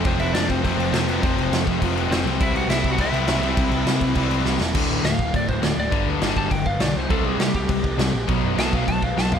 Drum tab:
CC |xxxxxxxx|xxxxxxxx|xxxxxxxx|xxxxxx--|
SD |--o---o-|--o---o-|--o---o-|--o---oo|
FT |--------|--------|--------|--------|
BD |o--oo---|o--oo---|o--oo---|o--oo---|

CC |x-x-x-x-|x-x-x-x-|x-x-x-x-|x-x-x---|
SD |--o---o-|--o---o-|--o---o-|--o---o-|
FT |--------|--------|--------|-------o|
BD |o--ooo--|o--ooo--|o--ooo--|o--ooo--|